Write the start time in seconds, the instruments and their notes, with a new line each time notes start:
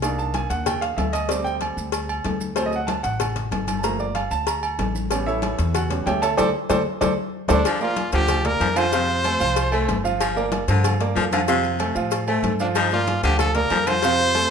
Already playing: upright bass C2
0.02 upright piano A#3 D4 D#4, cowbell, high conga, low agogo, maracas
0.18 upright piano A5, high conga, maracas
0.34 upright piano G#5, cowbell, high conga, low timbale, low agogo, maracas
0.50 upright bass D#2, upright piano F#5, cowbell, high conga, maracas
0.66 upright piano G5, cowbell, high conga, low conga, low agogo, maracas
0.81 upright piano F5, cowbell, high conga, maracas
0.97 upright bass D2, upright piano E5, cowbell, high conga, low timbale, low agogo, maracas
1.13 upright piano D#5, cowbell, low agogo, maracas
1.28 upright piano G3 A3 C4 D5, cowbell, high conga, maracas
1.44 upright piano G5, high conga, maracas
1.61 cowbell, high conga, low timbale, low agogo, maracas
1.77 upright bass D2, high conga, maracas
1.92 cowbell, high conga, low agogo, maracas
2.09 high conga, low agogo, maracas
2.24 upright bass D2, cowbell, high conga, low timbale, low agogo, maracas
2.41 high conga, maracas
2.56 upright piano F#3 A3 C4 C5, cowbell, high conga, low agogo, maracas
2.66 upright piano D#5
2.72 upright piano F#5, high conga, maracas
2.87 upright piano A5, cowbell, high conga, low timbale, low agogo, maracas
3.03 upright bass A1, upright piano F#5, cowbell, high conga, maracas
3.20 cowbell, high conga, low conga, low agogo, maracas
3.36 cowbell, high conga, low conga, maracas
3.51 upright bass G1, cowbell, high conga, low timbale, low agogo, maracas
3.67 cowbell, high conga, low agogo, maracas
3.79 upright piano F3 A5
3.84 upright piano A3 A#3 A#5, cowbell, high conga, maracas
3.99 upright piano D5, high conga, maracas
4.15 upright piano F5, cowbell, high conga, low timbale, low agogo, maracas
4.31 upright bass D2, upright piano A5, high conga, maracas
4.47 upright piano A#5, cowbell, high conga, low agogo, maracas
4.63 high conga, low agogo, maracas
4.79 upright bass A1, cowbell, high conga, low timbale, low agogo, maracas
4.95 high conga, maracas
5.10 upright piano G3 B3 C#4, cowbell, low agogo, maracas
5.26 upright piano E4 A4 C#5 E5, high conga, maracas
5.42 cowbell, high conga, low timbale, low agogo, maracas
5.59 upright bass E2, cowbell, high conga, maracas
5.75 upright piano F#4 F#5, cowbell, high conga, low conga, low agogo, maracas
5.90 upright piano G3 B3 C#4, cowbell, high conga, low conga, maracas
6.06 upright bass D2, upright piano G4 C#5 E5 G5, cowbell, high conga, low timbale, low agogo, maracas
6.22 upright piano A4 C#5 E5 A5, cowbell, low agogo, maracas
6.37 upright bass D2, upright piano A4 C5 D5, cowbell, high conga, high timbale, maracas
6.70 upright bass D2, upright piano A4 C5 D5, cowbell, high conga, high timbale, maracas
7.01 upright bass D2, upright piano A4 C5 D5, cowbell, high conga, high timbale, maracas
7.48 upright bass D2, trumpet D4, upright piano A4 C5 D5, cowbell, high conga, high timbale, maracas
7.65 baritone saxophone F3, cowbell, high conga, low agogo, maracas
7.80 upright piano A#3 A#4 D5, trumpet F4, high conga, maracas
7.96 cowbell, high conga, low timbale, low agogo, maracas
8.12 upright bass D2, baritone saxophone D3, upright piano F3 F4 F5, trumpet G4, cowbell, maracas
8.28 cowbell, high conga, low conga, low agogo, maracas
8.44 upright piano A#3 A#4 D5, trumpet A#4, cowbell, high conga, low conga, maracas
8.60 upright bass F2, baritone saxophone F3, cowbell, high conga, low timbale, low agogo, maracas
8.76 baritone saxophone D3, upright piano F3 F4 F5, trumpet C5, cowbell, low agogo, maracas
8.92 baritone saxophone C3, upright piano F3 F4 F5, cowbell, high conga, maracas
9.08 high conga, maracas
9.24 upright piano A3 A4 C5, cowbell, high conga, low timbale, low agogo, maracas
9.40 upright bass C2, upright piano F3 F4 F5, maracas
9.56 cowbell, high conga, low agogo, maracas
9.72 upright piano A3 A4 C5, baritone saxophone A3, high conga, low agogo, maracas
9.88 upright bass G1, cowbell, high conga, low timbale, low agogo, maracas
10.04 upright piano F3 F4 F5, maracas
10.20 baritone saxophone F3, cowbell, high conga, low agogo, maracas
10.36 upright piano A#3 A#4 D5, high conga, maracas
10.52 cowbell, high conga, low timbale, low agogo, maracas
10.68 upright bass G2, baritone saxophone D3, upright piano F3 F4 F5, cowbell, high conga, maracas
10.84 cowbell, high conga, low conga, low agogo, maracas
11.00 upright piano A#3 A#4 D5, cowbell, high conga, maracas
11.16 upright bass F2, baritone saxophone F3, cowbell, high conga, low timbale, low agogo, maracas
11.31 baritone saxophone D3, upright piano F3 F4 F5, cowbell, high conga, low agogo, maracas
11.48 baritone saxophone C3, upright piano F3 F4 F5, cowbell, maracas
11.64 high conga, maracas
11.79 upright piano A3 A4 C5, cowbell, high conga, low timbale, low agogo, maracas
11.95 upright bass A2, upright piano F3 F4 F5, high conga, maracas
12.11 cowbell, high conga, low agogo, maracas
12.27 upright piano A3 A4 C5, baritone saxophone A3, high conga, low agogo, maracas
12.43 upright bass G2, cowbell, high conga, low timbale, low agogo, maracas
12.60 upright piano F3 F4 F5, trumpet D4, maracas
12.75 baritone saxophone F3, trumpet D#4, cowbell, high conga, low agogo, maracas
12.91 upright piano A#3 A#4 D5, trumpet F4, high conga, maracas
13.07 cowbell, high conga, low timbale, low agogo, maracas
13.23 upright bass D2, baritone saxophone D3, upright piano F3 F4 F5, trumpet G4, cowbell, maracas
13.39 trumpet A4, cowbell, high conga, low conga, low agogo, maracas
13.55 upright piano A#3 A#4 D5, trumpet A#4, cowbell, high conga, low conga, maracas
13.70 upright bass F2, baritone saxophone F3, cowbell, high conga, low timbale, low agogo, maracas
13.87 baritone saxophone D3, upright piano F3 F4 F5, trumpet C5, cowbell, high conga, low agogo, maracas
14.03 baritone saxophone C3, upright piano F3 F4 F5, cowbell, high conga, maracas
14.19 high conga, maracas
14.34 upright piano A3 A4 C5, cowbell, high conga, low timbale, low agogo, maracas